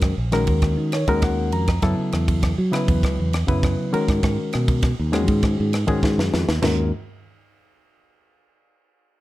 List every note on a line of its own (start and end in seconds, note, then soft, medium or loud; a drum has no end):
0.00 0.12 F#2 medium
0.00 0.14 D#3 medium
0.00 0.14 G#3 medium
0.00 0.14 C#4 medium
0.00 0.14 F#4 medium
0.00 0.14 A#4 loud
0.00 kick loud
0.00 cross-stick medium
0.00 ride medium
0.18 0.48 A#1 medium
0.32 0.92 D#3 medium
0.32 0.92 G#3 medium
0.32 0.92 C#4 medium
0.32 0.92 F#4 medium
0.32 0.92 A#4 loud
0.32 cross-stick medium
0.32 ride medium
0.47 0.61 D#2 medium
0.47 kick medium
0.47 ride medium
0.62 0.76 D#2 medium
0.62 kick medium
0.62 cross-stick medium
0.62 ride medium
0.77 1.03 D#3 medium
0.92 1.07 C#5 medium
0.92 cross-stick medium
0.92 ride medium
1.08 1.53 D#2 medium
1.08 1.67 D#3 medium
1.08 1.67 G#3 medium
1.08 1.68 C#4 medium
1.08 1.68 F#4 medium
1.08 1.68 A#4 loud
1.08 1.22 D#5 medium
1.08 kick medium
1.08 ride medium
1.22 1.51 F#5 medium
1.22 kick loud
1.22 cross-stick medium
1.22 ride medium
1.52 1.79 F2 medium
1.52 1.81 A#5 medium
1.52 ride medium
1.68 kick medium
1.68 cross-stick medium
1.68 ride medium
1.82 1.96 F#2 loud
1.82 2.54 C#3 medium
1.82 2.54 F#3 medium
1.82 2.54 B3 medium
1.82 2.54 E4 medium
1.82 2.54 A4 loud
1.82 kick medium
1.82 cross-stick medium
1.82 ride medium
2.12 2.52 E2 medium
2.12 cross-stick medium
2.12 ride medium
2.28 kick medium
2.28 ride medium
2.43 kick loud
2.43 cross-stick medium
2.43 ride medium
2.58 2.71 F#3 medium
2.72 3.32 C#3 medium
2.72 3.32 F#3 medium
2.72 3.32 B3 medium
2.72 3.32 E4 medium
2.72 3.32 B4 medium
2.72 cross-stick medium
2.72 ride medium
2.88 3.01 E2 medium
2.88 kick medium
2.88 ride medium
3.03 3.16 C#2 loud
3.03 kick medium
3.03 cross-stick medium
3.03 ride medium
3.20 3.45 E2 medium
3.33 cross-stick medium
3.33 ride medium
3.47 3.74 F#2 medium
3.47 3.93 C#3 medium
3.47 3.93 F#3 medium
3.47 3.93 B3 medium
3.47 3.93 E4 medium
3.47 3.93 B4 medium
3.47 kick medium
3.47 ride medium
3.63 kick loud
3.63 cross-stick medium
3.63 ride medium
3.93 4.89 D#3 medium
3.93 4.89 G#3 medium
3.93 4.89 C#4 medium
3.93 4.89 F#4 medium
3.93 4.89 A#4 loud
3.93 muted fingered electric bass stroke soft
3.93 ride medium
4.08 4.21 G#2 loud
4.08 kick medium
4.08 cross-stick medium
4.08 ride medium
4.23 4.36 G#2 loud
4.23 kick medium
4.23 cross-stick medium
4.23 ride medium
4.53 4.93 B2 medium
4.53 cross-stick medium
4.53 ride medium
4.68 kick medium
4.68 ride medium
4.82 kick loud
4.82 cross-stick medium
4.82 ride medium
5.00 5.28 D#2 medium
5.12 5.72 D#3 medium
5.12 5.72 G#3 medium
5.12 5.72 C#4 medium
5.12 5.72 F#4 medium
5.12 5.72 G#4 loud
5.12 cross-stick medium
5.12 ride medium
5.28 5.41 G#2 loud
5.28 kick medium
5.28 ride medium
5.43 5.56 G#2 medium
5.43 kick medium
5.43 cross-stick medium
5.43 ride medium
5.60 5.85 G#2 medium
5.73 cross-stick medium
5.73 ride medium
5.87 6.03 G#2 medium
5.87 6.47 D#3 loud
5.87 6.47 G#3 medium
5.87 6.47 C#4 medium
5.87 6.47 F#4 medium
5.87 6.47 G#4 loud
5.87 kick medium
5.87 ride medium
6.03 6.17 G#2 medium
6.03 kick loud
6.03 snare medium
6.18 6.31 F#2 medium
6.18 snare medium
6.34 6.47 F2 medium
6.34 snare medium
6.49 6.62 D#2 medium
6.49 snare medium
6.62 6.91 D#2 medium
6.62 6.90 D#3 medium
6.62 6.91 G#3 medium
6.62 6.91 C#4 medium
6.62 6.90 F#4 medium
6.62 6.91 A#4 medium
6.62 snare loud
6.62 floor tom loud
6.62 crash medium